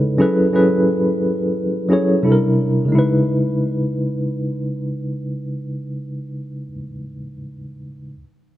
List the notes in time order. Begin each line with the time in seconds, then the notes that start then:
Already playing: C#3 G#3 D#4 E4 A4 B4
0.18 F#3 C#4 E4 G#4 A4 B4
0.53 F#3 C#4 E4 G#4 A4 B4
1.89 F#3 C#4 E4 G#4 A4
1.93 C#5
2.22 C3 G3 D4 E4 A4
2.32 A#4
2.85 C#3 G#3
2.92 D#4 E4
2.99 B4